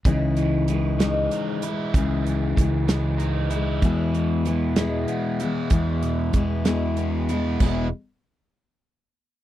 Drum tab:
CC |------|------|------|------|
HH |xxxxxx|xxxxxx|xxxxxx|xxxxxx|
SD |---o--|---o--|---o--|---o--|
BD |o-----|o-o---|o-----|o-o---|

CC |x-----|
HH |------|
SD |------|
BD |o-----|